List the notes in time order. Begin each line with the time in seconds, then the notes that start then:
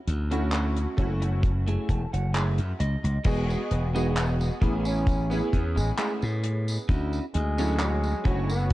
0.07 D2, closed hi-hat
0.31 A3 C#4 E4 F#4, closed hi-hat
0.52 clap, closed hi-hat
0.77 closed hi-hat
0.97 F#1 A3 C#4 E4 F#4, kick, closed hi-hat
1.22 muted clean electric guitar stroke, closed hi-hat
1.43 muted clean electric guitar stroke, kick, closed hi-hat
1.67 A3 E4 G#4, closed hi-hat
1.89 E1 A5, kick, closed hi-hat
2.13 F#1 F#5, closed hi-hat
2.34 A3 E4 G#4 E5, clap, closed hi-hat
2.58 F#2, closed hi-hat
2.79 C#2 D#5, muted clean electric guitar stroke, closed hi-hat
3.03 C#2, muted clean electric guitar stroke, closed hi-hat
3.24 E1 G#3 B3 D#4 E4 F#4 G#4 D#5, kick, closed hi-hat, crash, tambourine
3.50 tambourine
3.71 E1, closed hi-hat
3.94 G#3 B3 D#4 E4 F#4 G#4 D#5, tambourine
4.16 clap, closed hi-hat, tambourine
4.40 muted clean electric guitar stroke, tambourine
4.61 A1 A3 B3 C#4 E4 G#4, kick, closed hi-hat
4.85 C#4, tambourine
5.07 kick, closed hi-hat, tambourine
5.30 B3 C#4 E4 G#4, tambourine
5.53 E2, kick, closed hi-hat
5.76 A1 G#3, muted clean electric guitar stroke, tambourine
5.98 G#3 A3 C#4 E4 G#4, clap, closed hi-hat, tambourine
6.22 A2, tambourine
6.44 muted clean electric guitar stroke, closed hi-hat
6.68 tambourine
6.89 D2 C#4 D4 E4 F#4, kick, closed hi-hat, tambourine
7.13 tambourine
7.34 D2 G#3, closed hi-hat
7.58 F#3 C#4 D4 E4 F#4 A4 C#5, tambourine
7.79 G#3, clap, closed hi-hat, tambourine
8.04 muted clean electric guitar stroke, tambourine
8.24 F#1 A3 C#4 D4 E4 F#4 C#5, kick, closed hi-hat
8.50 B3, tambourine